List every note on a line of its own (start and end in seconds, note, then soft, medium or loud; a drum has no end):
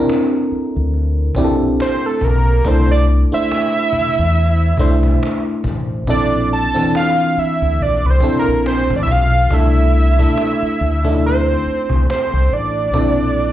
0.00 1.36 C4 medium
0.00 1.37 D4 medium
0.00 1.37 E4 medium
0.00 0.34 G4 medium
0.00 1.44 A4 medium
0.00 1.12 A#4 medium
0.09 cajon slap loud
0.34 cajon slap soft
0.51 muted fingered electric bass stroke soft
0.51 cajon slap soft
0.76 1.29 D2 medium
0.76 cajon slap soft
0.94 cajon slap soft
1.19 cajon slap soft
1.35 1.73 A#1 medium
1.35 2.44 C4 medium
1.35 2.44 D4 medium
1.35 2.44 E4 medium
1.35 1.45 G4 medium
1.35 cajon bass medium
1.44 2.48 A4 medium
1.61 cajon slap soft
1.80 2.07 C5 medium
1.80 cajon slap loud
2.02 2.26 A4 medium
2.02 cajon slap soft
2.21 2.59 B1 medium
2.21 2.69 A#4 medium
2.21 cajon bass medium
2.47 cajon slap soft
2.65 3.23 C2 loud
2.65 3.19 A3 medium
2.65 3.19 D4 medium
2.65 3.19 E4 medium
2.65 3.20 A4 medium
2.65 2.91 C5 medium
2.65 cajon bass loud
2.89 3.05 D5 medium
2.89 cajon slap soft
3.08 cajon slap soft
3.32 4.54 A3 medium
3.32 4.54 D4 medium
3.32 4.54 E4 medium
3.32 4.54 C5 medium
3.32 5.44 E5 loud
3.32 muted fingered electric bass stroke soft
3.32 cajon slap soft
3.51 cajon slap loud
3.77 cajon slap soft
3.93 muted fingered electric bass stroke soft
3.93 cajon bass medium
4.18 4.72 E2 medium
4.18 cajon slap soft
4.36 cajon slap soft
4.61 cajon slap soft
4.77 5.16 C2 medium
4.77 5.87 A3 medium
4.77 5.87 D4 medium
4.77 5.87 E4 medium
4.77 5.87 C5 medium
4.77 cajon bass medium
5.03 cajon bass medium
5.23 cajon slap loud
5.45 cajon slap soft
5.64 6.02 A1 loud
5.64 cajon bass loud
5.90 cajon slap soft
6.07 6.66 A#1 loud
6.07 6.62 C4 medium
6.07 6.62 D4 medium
6.07 6.62 E4 medium
6.07 6.62 A4 medium
6.07 6.49 D5 loud
6.07 cajon bass loud
6.31 cajon slap soft
6.51 6.92 A5 loud
6.51 cajon slap soft
6.74 7.97 E3 medium
6.74 7.96 C4 medium
6.74 7.96 D4 medium
6.74 7.97 A4 medium
6.74 muted fingered electric bass stroke soft
6.74 cajon bass medium
6.95 7.40 F5 loud
6.95 cajon slap loud
7.20 cajon slap soft
7.36 7.84 E5 medium
7.36 muted fingered electric bass stroke medium
7.36 cajon slap soft
7.61 7.77 D2 medium
7.61 cajon slap soft
7.79 8.01 A#1 medium
7.79 8.08 D5 medium
7.79 cajon slap soft
8.04 8.21 C2 medium
8.04 8.12 B4 medium
8.04 cajon slap soft
8.10 8.38 C5 medium
8.20 9.30 C4 medium
8.20 9.30 D4 medium
8.20 9.30 E4 medium
8.20 9.31 A4 medium
8.20 cajon bass medium
8.39 8.65 A#4 medium
8.47 8.85 A#1 medium
8.47 cajon slap soft
8.66 8.98 C5 medium
8.66 cajon slap loud
8.90 9.06 A1 medium
8.90 cajon bass loud
8.96 9.02 D5 medium
9.03 9.13 E5 medium
9.07 9.45 B1 medium
9.07 cajon bass medium
9.12 9.55 F5 loud
9.33 cajon slap soft
9.51 10.25 C2 medium
9.51 10.05 A3 medium
9.51 10.05 D4 medium
9.51 10.05 E4 medium
9.51 10.06 A4 medium
9.51 11.24 E5 loud
9.51 cajon bass loud
9.74 cajon slap soft
9.94 cajon slap soft
10.19 10.86 A3 medium
10.19 10.86 D4 medium
10.19 10.86 E4 medium
10.19 10.87 A4 medium
10.19 cajon bass medium
10.38 cajon slap loud
10.62 muted fingered electric bass stroke soft
10.62 cajon slap soft
10.80 11.54 D2 medium
10.80 cajon slap soft
11.04 12.42 A3 medium
11.04 12.42 D4 medium
11.04 11.10 D#4 soft
11.04 12.43 A4 medium
11.04 cajon bass medium
11.12 12.46 E4 medium
11.23 12.06 C5 medium
11.23 cajon slap soft
11.48 cajon slap soft
11.66 muted fingered electric bass stroke soft
11.66 cajon slap soft
11.90 12.06 C2 medium
11.90 cajon bass medium
12.10 12.55 C5 medium
12.10 cajon slap loud
12.32 12.49 C2 medium
12.32 cajon slap soft
12.50 12.89 A1 medium
12.50 13.53 D5 medium
12.50 cajon slap soft
12.77 cajon slap soft
12.93 13.53 A#1 loud
12.93 13.47 C4 medium
12.93 13.48 D4 medium
12.93 13.48 E4 medium
12.93 13.48 A4 medium
12.93 cajon bass loud
13.17 cajon slap soft
13.37 cajon slap soft